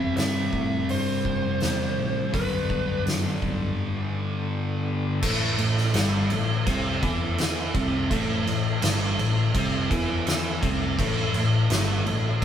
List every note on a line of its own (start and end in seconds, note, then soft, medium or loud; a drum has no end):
0.00 0.10 E2 medium
0.00 2.31 C3 medium
0.00 2.31 G3 medium
0.00 2.32 G3 medium
0.00 2.31 C4 medium
0.00 2.32 C4 medium
0.00 2.31 E4 medium
0.00 2.31 G4 medium
0.00 0.16 E5 loud
0.17 0.47 G2 medium
0.17 0.91 E5 medium
0.17 snare loud
0.17 open hi-hat soft
0.53 0.83 A2 medium
0.53 kick medium
0.89 1.50 G2 medium
0.89 2.34 C5 medium
0.89 open hi-hat soft
1.25 kick medium
1.60 1.92 E2 medium
1.60 snare loud
1.60 open hi-hat soft
1.98 2.28 A1 medium
2.32 2.64 B1 medium
2.32 5.21 G2 medium
2.32 5.21 D3 medium
2.32 5.22 G3 loud
2.32 2.57 G#3 medium
2.32 2.57 C4 medium
2.32 2.57 D#4 medium
2.32 2.57 G#4 medium
2.32 3.02 B4 medium
2.32 kick loud
2.32 open hi-hat soft
2.58 5.20 D3 medium
2.58 5.21 B3 medium
2.58 5.21 D4 medium
2.58 5.21 G4 medium
2.70 3.00 B1 medium
2.70 kick medium
3.06 3.36 F#2 medium
3.06 snare loud
3.06 open hi-hat medium
3.42 3.73 B1 medium
3.42 kick medium
5.20 5.57 A1 medium
5.20 5.58 A2 medium
5.20 8.07 A3 medium
5.20 5.58 A3 loud
5.20 8.07 E4 medium
5.20 8.07 A4 medium
5.20 kick loud
5.20 crash loud
5.20 crash medium
5.58 5.93 A1 medium
5.58 5.88 A2 medium
5.58 crash medium
5.78 snare soft
5.94 6.28 G1 medium
5.94 6.30 G2 medium
5.94 6.30 G3 loud
5.94 snare loud
5.94 crash medium
6.30 6.65 A1 medium
6.30 6.60 A2 medium
6.30 crash medium
6.66 7.01 C2 medium
6.66 7.02 C3 medium
6.66 7.02 C4 loud
6.66 kick loud
6.66 crash medium
7.03 7.71 E2 medium
7.03 7.74 E3 medium
7.03 7.74 E4 loud
7.03 kick loud
7.03 crash medium
7.38 snare loud
7.38 crash medium
7.74 8.08 C2 medium
7.74 8.10 C3 loud
7.74 8.10 C4 loud
7.74 kick loud
7.74 crash medium
8.09 8.45 A1 medium
8.09 8.45 A2 medium
8.09 10.95 A3 medium
8.09 8.46 A3 loud
8.09 10.95 E4 medium
8.09 10.95 A4 medium
8.09 kick loud
8.09 crash medium
8.46 8.80 A1 medium
8.46 8.75 A2 medium
8.46 crash medium
8.82 9.17 G1 loud
8.82 9.18 G2 medium
8.82 9.18 G3 medium
8.82 snare loud
8.82 crash medium
9.18 9.52 A1 medium
9.18 9.48 A2 medium
9.18 crash medium
9.55 9.88 C2 medium
9.55 9.90 C3 medium
9.55 9.90 C4 loud
9.55 kick loud
9.55 crash medium
9.91 10.59 E2 loud
9.91 10.61 E3 loud
9.91 10.62 E4 loud
9.91 kick loud
9.91 crash medium
10.27 snare loud
10.27 crash medium
10.62 10.96 C2 medium
10.62 10.97 C3 medium
10.62 10.97 C4 loud
10.62 kick loud
10.62 crash medium
10.97 11.32 A1 loud
10.97 11.33 A2 loud
10.97 12.45 A3 medium
10.97 11.34 A3 loud
10.97 12.45 E4 medium
10.97 12.45 A4 medium
10.97 kick loud
10.97 crash medium
11.34 11.68 A1 medium
11.34 11.63 A2 medium
11.34 crash medium
11.70 12.03 G1 loud
11.70 12.05 G2 loud
11.70 12.05 G3 loud
11.70 snare loud
11.70 crash medium
12.06 12.40 A1 medium
12.06 12.35 A2 medium
12.06 crash medium
12.42 12.45 C3 loud